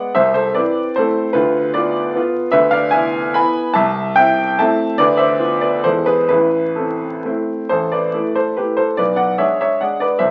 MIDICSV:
0, 0, Header, 1, 2, 480
1, 0, Start_track
1, 0, Key_signature, 0, "minor"
1, 0, Tempo, 395778
1, 187, Time_signature, 3, 2, 24, 8
1, 3071, Tempo, 410678
1, 6431, Tempo, 456621
1, 9311, Tempo, 412088
1, 11826, End_track
2, 0, Start_track
2, 0, Title_t, "Grand piano"
2, 0, Program_c, 0, 0
2, 0, Note_on_c, 0, 56, 59
2, 0, Note_on_c, 0, 59, 59
2, 0, Note_on_c, 0, 74, 57
2, 0, Note_on_c, 0, 78, 77
2, 137, Note_off_c, 0, 59, 0
2, 139, Note_off_c, 0, 56, 0
2, 145, Note_off_c, 0, 74, 0
2, 173, Note_off_c, 0, 78, 0
2, 177, Note_on_c, 0, 76, 111
2, 185, Note_on_c, 0, 72, 87
2, 195, Note_on_c, 0, 36, 73
2, 397, Note_off_c, 0, 72, 0
2, 415, Note_on_c, 0, 72, 89
2, 421, Note_off_c, 0, 76, 0
2, 425, Note_on_c, 0, 69, 69
2, 428, Control_c, 0, 64, 127
2, 660, Note_on_c, 0, 74, 88
2, 661, Note_off_c, 0, 69, 0
2, 669, Note_off_c, 0, 36, 0
2, 673, Note_on_c, 0, 71, 73
2, 674, Note_off_c, 0, 72, 0
2, 678, Note_on_c, 0, 60, 50
2, 680, Note_on_c, 0, 64, 58
2, 688, Control_c, 0, 64, 0
2, 1130, Note_off_c, 0, 60, 0
2, 1131, Note_off_c, 0, 64, 0
2, 1141, Note_off_c, 0, 71, 0
2, 1162, Note_on_c, 0, 72, 91
2, 1170, Note_off_c, 0, 74, 0
2, 1180, Note_on_c, 0, 57, 65
2, 1181, Note_on_c, 0, 69, 69
2, 1191, Note_on_c, 0, 60, 63
2, 1199, Note_on_c, 0, 64, 68
2, 1606, Note_off_c, 0, 57, 0
2, 1611, Note_off_c, 0, 60, 0
2, 1613, Note_on_c, 0, 71, 99
2, 1616, Note_off_c, 0, 64, 0
2, 1620, Note_off_c, 0, 69, 0
2, 1630, Note_on_c, 0, 65, 78
2, 1632, Note_on_c, 0, 38, 76
2, 1643, Note_off_c, 0, 72, 0
2, 1881, Control_c, 0, 64, 127
2, 2087, Note_off_c, 0, 65, 0
2, 2099, Note_off_c, 0, 71, 0
2, 2106, Note_on_c, 0, 74, 97
2, 2107, Note_off_c, 0, 38, 0
2, 2117, Note_on_c, 0, 71, 75
2, 2129, Note_on_c, 0, 59, 58
2, 2130, Note_on_c, 0, 65, 63
2, 2353, Note_off_c, 0, 71, 0
2, 2365, Note_off_c, 0, 74, 0
2, 2561, Note_off_c, 0, 59, 0
2, 2562, Note_off_c, 0, 65, 0
2, 2609, Note_on_c, 0, 59, 60
2, 2623, Note_on_c, 0, 65, 71
2, 2624, Control_c, 0, 64, 0
2, 3025, Note_off_c, 0, 59, 0
2, 3033, Note_off_c, 0, 65, 0
2, 3050, Note_on_c, 0, 76, 118
2, 3060, Note_on_c, 0, 71, 93
2, 3064, Note_on_c, 0, 38, 78
2, 3277, Note_on_c, 0, 77, 108
2, 3280, Note_off_c, 0, 71, 0
2, 3292, Note_off_c, 0, 76, 0
2, 3295, Note_on_c, 0, 74, 79
2, 3304, Control_c, 0, 64, 127
2, 3510, Note_on_c, 0, 80, 114
2, 3525, Note_off_c, 0, 74, 0
2, 3528, Note_off_c, 0, 38, 0
2, 3530, Note_on_c, 0, 76, 85
2, 3533, Note_off_c, 0, 77, 0
2, 3534, Note_on_c, 0, 59, 61
2, 3535, Note_on_c, 0, 64, 69
2, 3980, Note_off_c, 0, 59, 0
2, 3980, Note_off_c, 0, 64, 0
2, 3990, Note_off_c, 0, 76, 0
2, 4013, Note_off_c, 0, 80, 0
2, 4018, Note_on_c, 0, 83, 108
2, 4031, Note_on_c, 0, 80, 88
2, 4032, Note_on_c, 0, 59, 69
2, 4040, Note_on_c, 0, 64, 69
2, 4043, Control_c, 0, 64, 0
2, 4461, Note_off_c, 0, 59, 0
2, 4465, Note_off_c, 0, 64, 0
2, 4474, Note_off_c, 0, 80, 0
2, 4478, Note_on_c, 0, 81, 118
2, 4495, Note_on_c, 0, 76, 95
2, 4501, Note_off_c, 0, 83, 0
2, 4504, Note_on_c, 0, 36, 89
2, 4736, Control_c, 0, 64, 127
2, 4949, Note_off_c, 0, 76, 0
2, 4969, Note_on_c, 0, 79, 126
2, 4973, Note_off_c, 0, 36, 0
2, 4975, Note_off_c, 0, 81, 0
2, 4986, Note_on_c, 0, 76, 91
2, 4992, Note_on_c, 0, 60, 67
2, 4993, Note_on_c, 0, 64, 69
2, 5431, Note_off_c, 0, 60, 0
2, 5431, Note_off_c, 0, 64, 0
2, 5440, Note_off_c, 0, 76, 0
2, 5466, Note_off_c, 0, 79, 0
2, 5474, Note_on_c, 0, 81, 118
2, 5479, Note_on_c, 0, 76, 86
2, 5484, Note_on_c, 0, 57, 73
2, 5486, Control_c, 0, 64, 0
2, 5493, Note_on_c, 0, 60, 69
2, 5496, Note_on_c, 0, 64, 80
2, 5901, Note_off_c, 0, 57, 0
2, 5906, Note_off_c, 0, 60, 0
2, 5907, Note_off_c, 0, 64, 0
2, 5912, Note_off_c, 0, 76, 0
2, 5933, Note_on_c, 0, 74, 127
2, 5942, Note_off_c, 0, 81, 0
2, 5950, Note_on_c, 0, 38, 91
2, 5957, Note_on_c, 0, 71, 93
2, 6156, Control_c, 0, 64, 127
2, 6158, Note_on_c, 0, 76, 106
2, 6171, Note_off_c, 0, 71, 0
2, 6173, Note_on_c, 0, 72, 82
2, 6175, Note_off_c, 0, 74, 0
2, 6416, Note_on_c, 0, 59, 62
2, 6419, Note_on_c, 0, 65, 62
2, 6421, Note_off_c, 0, 38, 0
2, 6631, Note_off_c, 0, 72, 0
2, 6646, Note_on_c, 0, 74, 95
2, 6657, Note_off_c, 0, 76, 0
2, 6658, Note_on_c, 0, 71, 77
2, 6850, Note_off_c, 0, 59, 0
2, 6851, Note_off_c, 0, 65, 0
2, 6878, Note_off_c, 0, 71, 0
2, 6884, Note_on_c, 0, 72, 96
2, 6889, Note_off_c, 0, 74, 0
2, 6890, Note_on_c, 0, 69, 71
2, 6896, Note_on_c, 0, 40, 63
2, 6903, Note_on_c, 0, 56, 50
2, 6907, Note_on_c, 0, 59, 49
2, 6912, Control_c, 0, 64, 0
2, 6914, Note_on_c, 0, 64, 47
2, 7112, Note_off_c, 0, 69, 0
2, 7117, Note_on_c, 0, 71, 98
2, 7122, Control_c, 0, 64, 127
2, 7126, Note_off_c, 0, 72, 0
2, 7128, Note_on_c, 0, 68, 68
2, 7333, Note_off_c, 0, 56, 0
2, 7335, Note_off_c, 0, 59, 0
2, 7338, Note_off_c, 0, 64, 0
2, 7339, Note_off_c, 0, 71, 0
2, 7353, Note_off_c, 0, 68, 0
2, 7355, Note_on_c, 0, 71, 95
2, 7357, Note_off_c, 0, 40, 0
2, 7371, Note_on_c, 0, 64, 76
2, 7374, Note_on_c, 0, 33, 71
2, 7385, Control_c, 0, 64, 0
2, 7626, Control_c, 0, 64, 127
2, 7834, Note_off_c, 0, 64, 0
2, 7852, Note_on_c, 0, 69, 66
2, 7856, Note_off_c, 0, 33, 0
2, 7861, Note_off_c, 0, 71, 0
2, 7866, Note_on_c, 0, 64, 51
2, 7875, Note_on_c, 0, 60, 50
2, 8327, Note_off_c, 0, 60, 0
2, 8330, Note_off_c, 0, 64, 0
2, 8358, Note_off_c, 0, 69, 0
2, 8363, Note_on_c, 0, 57, 49
2, 8375, Control_c, 0, 64, 0
2, 8377, Note_on_c, 0, 64, 58
2, 8379, Note_on_c, 0, 60, 51
2, 8799, Note_off_c, 0, 57, 0
2, 8806, Note_off_c, 0, 64, 0
2, 8807, Note_off_c, 0, 60, 0
2, 8835, Note_on_c, 0, 72, 88
2, 8847, Note_on_c, 0, 69, 66
2, 8848, Note_on_c, 0, 33, 66
2, 9059, Note_off_c, 0, 69, 0
2, 9069, Note_off_c, 0, 72, 0
2, 9069, Note_on_c, 0, 74, 80
2, 9073, Control_c, 0, 64, 127
2, 9080, Note_on_c, 0, 71, 62
2, 9294, Note_on_c, 0, 57, 53
2, 9300, Note_off_c, 0, 33, 0
2, 9304, Note_on_c, 0, 64, 59
2, 9321, Control_c, 0, 64, 0
2, 9539, Note_off_c, 0, 71, 0
2, 9553, Note_on_c, 0, 72, 77
2, 9562, Note_on_c, 0, 69, 55
2, 9569, Note_off_c, 0, 74, 0
2, 9761, Note_off_c, 0, 57, 0
2, 9766, Note_off_c, 0, 64, 0
2, 9795, Note_off_c, 0, 69, 0
2, 9799, Note_on_c, 0, 71, 69
2, 9808, Note_off_c, 0, 72, 0
2, 9810, Note_on_c, 0, 67, 58
2, 9819, Note_on_c, 0, 57, 45
2, 9824, Note_on_c, 0, 64, 48
2, 10034, Note_off_c, 0, 67, 0
2, 10034, Note_on_c, 0, 72, 82
2, 10044, Note_on_c, 0, 69, 63
2, 10046, Note_off_c, 0, 71, 0
2, 10240, Note_off_c, 0, 57, 0
2, 10243, Note_off_c, 0, 64, 0
2, 10264, Note_off_c, 0, 69, 0
2, 10274, Note_on_c, 0, 74, 96
2, 10276, Note_off_c, 0, 72, 0
2, 10287, Note_on_c, 0, 35, 68
2, 10291, Note_on_c, 0, 71, 69
2, 10485, Note_off_c, 0, 74, 0
2, 10488, Control_c, 0, 64, 127
2, 10495, Note_on_c, 0, 78, 86
2, 10502, Note_on_c, 0, 74, 68
2, 10506, Note_off_c, 0, 71, 0
2, 10739, Note_off_c, 0, 74, 0
2, 10750, Note_on_c, 0, 76, 89
2, 10751, Note_off_c, 0, 35, 0
2, 10753, Note_off_c, 0, 78, 0
2, 10755, Note_on_c, 0, 73, 67
2, 10763, Note_on_c, 0, 56, 56
2, 10767, Note_on_c, 0, 62, 50
2, 10775, Note_on_c, 0, 68, 56
2, 10776, Control_c, 0, 64, 0
2, 10993, Note_off_c, 0, 73, 0
2, 10995, Note_off_c, 0, 76, 0
2, 11012, Note_on_c, 0, 76, 87
2, 11024, Note_on_c, 0, 73, 64
2, 11213, Note_off_c, 0, 56, 0
2, 11215, Note_off_c, 0, 62, 0
2, 11219, Note_off_c, 0, 68, 0
2, 11244, Note_on_c, 0, 78, 72
2, 11247, Note_off_c, 0, 73, 0
2, 11258, Note_on_c, 0, 74, 56
2, 11259, Note_off_c, 0, 76, 0
2, 11260, Note_on_c, 0, 62, 41
2, 11262, Note_on_c, 0, 56, 44
2, 11274, Note_on_c, 0, 68, 47
2, 11454, Note_off_c, 0, 74, 0
2, 11472, Note_on_c, 0, 74, 88
2, 11486, Note_off_c, 0, 78, 0
2, 11487, Note_on_c, 0, 71, 69
2, 11673, Note_off_c, 0, 62, 0
2, 11674, Note_off_c, 0, 56, 0
2, 11681, Note_off_c, 0, 68, 0
2, 11688, Note_on_c, 0, 76, 97
2, 11698, Note_on_c, 0, 72, 70
2, 11699, Note_off_c, 0, 71, 0
2, 11701, Note_on_c, 0, 36, 59
2, 11708, Note_off_c, 0, 74, 0
2, 11826, Note_off_c, 0, 36, 0
2, 11826, Note_off_c, 0, 72, 0
2, 11826, Note_off_c, 0, 76, 0
2, 11826, End_track
0, 0, End_of_file